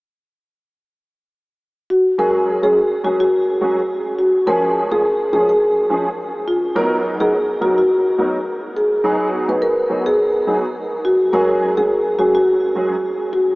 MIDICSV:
0, 0, Header, 1, 3, 480
1, 0, Start_track
1, 0, Key_signature, 6, "major"
1, 0, Tempo, 571429
1, 1835, Time_signature, 4, 2, 24, 8
1, 11384, End_track
2, 0, Start_track
2, 0, Title_t, "Marimba"
2, 0, Program_c, 0, 12
2, 1597, Note_on_c, 0, 66, 79
2, 1839, Note_on_c, 0, 70, 91
2, 1843, Note_off_c, 0, 66, 0
2, 2183, Note_off_c, 0, 70, 0
2, 2212, Note_on_c, 0, 68, 81
2, 2533, Note_off_c, 0, 68, 0
2, 2558, Note_on_c, 0, 66, 79
2, 2679, Note_off_c, 0, 66, 0
2, 2689, Note_on_c, 0, 66, 86
2, 3482, Note_off_c, 0, 66, 0
2, 3516, Note_on_c, 0, 66, 81
2, 3757, Note_on_c, 0, 70, 93
2, 3762, Note_off_c, 0, 66, 0
2, 4101, Note_off_c, 0, 70, 0
2, 4130, Note_on_c, 0, 68, 90
2, 4469, Note_off_c, 0, 68, 0
2, 4479, Note_on_c, 0, 68, 89
2, 4603, Note_off_c, 0, 68, 0
2, 4614, Note_on_c, 0, 68, 89
2, 5440, Note_on_c, 0, 65, 84
2, 5463, Note_off_c, 0, 68, 0
2, 5680, Note_on_c, 0, 70, 92
2, 5684, Note_off_c, 0, 65, 0
2, 6051, Note_on_c, 0, 68, 85
2, 6060, Note_off_c, 0, 70, 0
2, 6372, Note_off_c, 0, 68, 0
2, 6400, Note_on_c, 0, 66, 88
2, 6520, Note_off_c, 0, 66, 0
2, 6535, Note_on_c, 0, 66, 86
2, 7325, Note_off_c, 0, 66, 0
2, 7363, Note_on_c, 0, 68, 97
2, 7937, Note_off_c, 0, 68, 0
2, 7972, Note_on_c, 0, 71, 87
2, 8080, Note_on_c, 0, 70, 93
2, 8081, Note_off_c, 0, 71, 0
2, 8452, Note_on_c, 0, 68, 87
2, 8460, Note_off_c, 0, 70, 0
2, 9281, Note_on_c, 0, 66, 88
2, 9302, Note_off_c, 0, 68, 0
2, 9501, Note_off_c, 0, 66, 0
2, 9519, Note_on_c, 0, 70, 101
2, 9890, Note_on_c, 0, 68, 88
2, 9900, Note_off_c, 0, 70, 0
2, 10212, Note_off_c, 0, 68, 0
2, 10237, Note_on_c, 0, 66, 86
2, 10296, Note_off_c, 0, 66, 0
2, 10372, Note_on_c, 0, 66, 86
2, 11187, Note_off_c, 0, 66, 0
2, 11197, Note_on_c, 0, 66, 90
2, 11384, Note_off_c, 0, 66, 0
2, 11384, End_track
3, 0, Start_track
3, 0, Title_t, "Grand piano"
3, 0, Program_c, 1, 0
3, 1832, Note_on_c, 1, 54, 85
3, 1834, Note_on_c, 1, 56, 80
3, 1835, Note_on_c, 1, 61, 76
3, 1838, Note_on_c, 1, 68, 96
3, 2173, Note_off_c, 1, 54, 0
3, 2175, Note_off_c, 1, 56, 0
3, 2175, Note_off_c, 1, 61, 0
3, 2176, Note_off_c, 1, 68, 0
3, 2202, Note_on_c, 1, 54, 70
3, 2203, Note_on_c, 1, 56, 67
3, 2206, Note_on_c, 1, 61, 66
3, 2207, Note_on_c, 1, 68, 77
3, 2319, Note_off_c, 1, 54, 0
3, 2320, Note_off_c, 1, 56, 0
3, 2322, Note_off_c, 1, 61, 0
3, 2322, Note_off_c, 1, 68, 0
3, 2550, Note_on_c, 1, 54, 71
3, 2552, Note_on_c, 1, 56, 65
3, 2553, Note_on_c, 1, 61, 68
3, 2555, Note_on_c, 1, 68, 76
3, 2690, Note_off_c, 1, 54, 0
3, 2691, Note_off_c, 1, 56, 0
3, 2692, Note_off_c, 1, 61, 0
3, 2693, Note_off_c, 1, 68, 0
3, 3031, Note_on_c, 1, 54, 76
3, 3033, Note_on_c, 1, 56, 68
3, 3035, Note_on_c, 1, 61, 68
3, 3037, Note_on_c, 1, 68, 84
3, 3171, Note_off_c, 1, 54, 0
3, 3172, Note_off_c, 1, 56, 0
3, 3173, Note_off_c, 1, 61, 0
3, 3174, Note_off_c, 1, 68, 0
3, 3751, Note_on_c, 1, 53, 85
3, 3752, Note_on_c, 1, 56, 77
3, 3754, Note_on_c, 1, 61, 81
3, 3757, Note_on_c, 1, 68, 98
3, 4093, Note_off_c, 1, 53, 0
3, 4094, Note_off_c, 1, 56, 0
3, 4095, Note_off_c, 1, 61, 0
3, 4096, Note_off_c, 1, 68, 0
3, 4124, Note_on_c, 1, 53, 72
3, 4125, Note_on_c, 1, 56, 63
3, 4127, Note_on_c, 1, 61, 65
3, 4129, Note_on_c, 1, 68, 81
3, 4240, Note_off_c, 1, 53, 0
3, 4241, Note_off_c, 1, 56, 0
3, 4242, Note_off_c, 1, 61, 0
3, 4243, Note_off_c, 1, 68, 0
3, 4471, Note_on_c, 1, 53, 71
3, 4472, Note_on_c, 1, 56, 64
3, 4475, Note_on_c, 1, 61, 66
3, 4477, Note_on_c, 1, 68, 84
3, 4611, Note_off_c, 1, 53, 0
3, 4611, Note_off_c, 1, 56, 0
3, 4613, Note_off_c, 1, 61, 0
3, 4614, Note_off_c, 1, 68, 0
3, 4952, Note_on_c, 1, 53, 75
3, 4954, Note_on_c, 1, 56, 69
3, 4955, Note_on_c, 1, 61, 71
3, 4957, Note_on_c, 1, 68, 87
3, 5091, Note_off_c, 1, 53, 0
3, 5092, Note_off_c, 1, 56, 0
3, 5093, Note_off_c, 1, 61, 0
3, 5094, Note_off_c, 1, 68, 0
3, 5672, Note_on_c, 1, 54, 88
3, 5673, Note_on_c, 1, 59, 78
3, 5675, Note_on_c, 1, 63, 81
3, 5677, Note_on_c, 1, 70, 100
3, 6013, Note_off_c, 1, 54, 0
3, 6014, Note_off_c, 1, 59, 0
3, 6015, Note_off_c, 1, 63, 0
3, 6016, Note_off_c, 1, 70, 0
3, 6044, Note_on_c, 1, 54, 72
3, 6046, Note_on_c, 1, 59, 67
3, 6048, Note_on_c, 1, 63, 66
3, 6049, Note_on_c, 1, 70, 78
3, 6161, Note_off_c, 1, 54, 0
3, 6161, Note_off_c, 1, 59, 0
3, 6162, Note_off_c, 1, 63, 0
3, 6163, Note_off_c, 1, 70, 0
3, 6390, Note_on_c, 1, 54, 75
3, 6392, Note_on_c, 1, 59, 65
3, 6394, Note_on_c, 1, 63, 68
3, 6395, Note_on_c, 1, 70, 81
3, 6530, Note_off_c, 1, 54, 0
3, 6531, Note_off_c, 1, 59, 0
3, 6532, Note_off_c, 1, 63, 0
3, 6533, Note_off_c, 1, 70, 0
3, 6872, Note_on_c, 1, 54, 72
3, 6874, Note_on_c, 1, 59, 69
3, 6876, Note_on_c, 1, 63, 70
3, 6877, Note_on_c, 1, 70, 83
3, 7011, Note_off_c, 1, 54, 0
3, 7012, Note_off_c, 1, 59, 0
3, 7013, Note_off_c, 1, 63, 0
3, 7014, Note_off_c, 1, 70, 0
3, 7592, Note_on_c, 1, 54, 90
3, 7592, Note_on_c, 1, 59, 81
3, 7596, Note_on_c, 1, 63, 77
3, 7597, Note_on_c, 1, 68, 96
3, 7933, Note_off_c, 1, 54, 0
3, 7934, Note_off_c, 1, 59, 0
3, 7935, Note_off_c, 1, 63, 0
3, 7936, Note_off_c, 1, 68, 0
3, 7962, Note_on_c, 1, 54, 75
3, 7964, Note_on_c, 1, 59, 63
3, 7965, Note_on_c, 1, 63, 68
3, 7967, Note_on_c, 1, 68, 76
3, 8080, Note_off_c, 1, 54, 0
3, 8080, Note_off_c, 1, 59, 0
3, 8081, Note_off_c, 1, 63, 0
3, 8082, Note_off_c, 1, 68, 0
3, 8313, Note_on_c, 1, 54, 75
3, 8314, Note_on_c, 1, 59, 68
3, 8316, Note_on_c, 1, 63, 64
3, 8317, Note_on_c, 1, 68, 75
3, 8451, Note_off_c, 1, 54, 0
3, 8452, Note_off_c, 1, 59, 0
3, 8453, Note_off_c, 1, 63, 0
3, 8454, Note_off_c, 1, 68, 0
3, 8794, Note_on_c, 1, 54, 74
3, 8795, Note_on_c, 1, 59, 69
3, 8796, Note_on_c, 1, 63, 70
3, 8798, Note_on_c, 1, 68, 81
3, 8932, Note_off_c, 1, 54, 0
3, 8932, Note_off_c, 1, 59, 0
3, 8933, Note_off_c, 1, 63, 0
3, 8934, Note_off_c, 1, 68, 0
3, 9513, Note_on_c, 1, 54, 84
3, 9515, Note_on_c, 1, 56, 79
3, 9518, Note_on_c, 1, 61, 79
3, 9518, Note_on_c, 1, 68, 94
3, 9854, Note_off_c, 1, 54, 0
3, 9855, Note_off_c, 1, 56, 0
3, 9856, Note_off_c, 1, 61, 0
3, 9856, Note_off_c, 1, 68, 0
3, 9885, Note_on_c, 1, 54, 70
3, 9886, Note_on_c, 1, 56, 63
3, 9888, Note_on_c, 1, 61, 66
3, 9889, Note_on_c, 1, 68, 79
3, 10001, Note_off_c, 1, 54, 0
3, 10001, Note_off_c, 1, 56, 0
3, 10002, Note_off_c, 1, 61, 0
3, 10003, Note_off_c, 1, 68, 0
3, 10233, Note_on_c, 1, 54, 71
3, 10235, Note_on_c, 1, 56, 65
3, 10235, Note_on_c, 1, 61, 65
3, 10238, Note_on_c, 1, 68, 78
3, 10372, Note_off_c, 1, 54, 0
3, 10372, Note_off_c, 1, 56, 0
3, 10373, Note_off_c, 1, 61, 0
3, 10374, Note_off_c, 1, 68, 0
3, 10713, Note_on_c, 1, 54, 75
3, 10715, Note_on_c, 1, 56, 71
3, 10716, Note_on_c, 1, 61, 69
3, 10718, Note_on_c, 1, 68, 83
3, 10852, Note_off_c, 1, 54, 0
3, 10853, Note_off_c, 1, 56, 0
3, 10853, Note_off_c, 1, 61, 0
3, 10854, Note_off_c, 1, 68, 0
3, 11384, End_track
0, 0, End_of_file